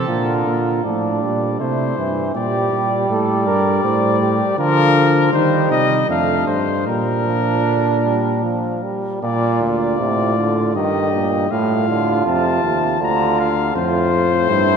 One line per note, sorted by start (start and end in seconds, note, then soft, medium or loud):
0.07 0.44 A#2 medium
0.07 0.81 D3 medium
0.07 0.86 F4 medium
0.07 0.80 A#4 medium
0.46 0.84 A#2 medium
0.84 1.24 A2 medium
0.84 1.23 F3 medium
0.84 1.62 D4 medium
0.84 1.58 D5 medium
1.22 1.60 A#2 medium
1.22 1.62 G3 medium
1.60 1.97 C3 medium
1.60 1.97 A3 medium
1.60 2.34 E4 medium
1.60 2.33 C5 medium
1.98 2.34 G2 medium
1.98 2.34 E3 medium
2.35 2.71 A#2 medium
2.35 4.54 G3 medium
2.35 3.08 G4 medium
2.35 3.08 D5 medium
2.72 3.09 A#2 medium
3.09 3.48 A2 medium
3.09 3.46 A4 medium
3.09 4.56 D5 medium
3.47 3.83 G2 medium
3.47 3.83 A#4 medium
3.84 4.41 A2 medium
3.84 4.20 C5 medium
4.21 4.58 G4 medium
4.58 5.32 D3 medium
4.58 5.32 F3 loud
4.58 5.17 F4 medium
4.58 5.32 A#4 loud
5.33 5.70 D#3 medium
5.33 6.08 G3 medium
5.33 6.08 D#4 medium
5.33 5.70 C5 medium
5.71 6.08 C3 medium
5.71 6.09 D#5 loud
6.09 6.47 F2 medium
6.09 6.58 A3 medium
6.09 6.59 D4 medium
6.09 6.47 F5 medium
6.47 6.88 G2 medium
6.47 6.86 C5 medium
6.87 8.84 A#2 medium
6.87 7.28 G3 medium
6.87 8.81 D4 medium
6.87 8.80 A#4 medium
7.26 7.65 F3 medium
7.65 8.03 D3 medium
8.04 8.45 G3 medium
8.43 8.84 F3 medium
8.83 9.21 G3 medium
9.22 10.00 A#2 loud
9.22 9.63 A#2 medium
9.22 9.96 F4 medium
9.22 9.59 D5 medium
9.62 9.99 D2 medium
9.62 10.73 D5 medium
9.98 10.77 A2 medium
9.98 10.36 C3 medium
9.98 10.74 F4 medium
10.37 10.74 D3 medium
10.75 11.51 G2 medium
10.75 11.12 D#3 medium
10.75 11.50 G4 medium
10.75 11.52 D#5 medium
11.13 11.50 A#2 medium
11.50 11.88 A2 medium
11.50 12.25 A2 medium
11.50 12.99 F4 medium
11.50 12.26 F5 medium
11.89 12.26 D3 medium
12.26 12.63 F2 medium
12.26 12.63 C3 medium
12.26 13.00 A5 medium
12.64 13.01 D#2 medium
12.64 13.00 C3 medium
13.01 13.74 D2 medium
13.01 13.77 D3 loud
13.01 13.74 F4 medium
13.01 13.41 A#5 medium
13.40 13.75 F5 medium
13.75 14.49 F2 medium
13.75 14.12 A2 medium
13.75 14.49 F4 medium
13.75 14.77 C5 loud
14.12 14.77 A2 medium
14.50 14.77 G2 medium
14.50 14.77 E4 medium